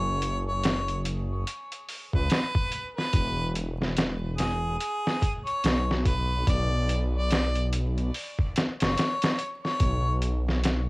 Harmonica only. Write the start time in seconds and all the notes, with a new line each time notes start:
Already playing: C#5
0.48 C#5
2.14 B4
2.97 B4
4.38 G#4
4.78 G#4
5.46 C#5
6.06 B4
6.48 D5
7.15 D5
8.81 C#5
9.64 C#5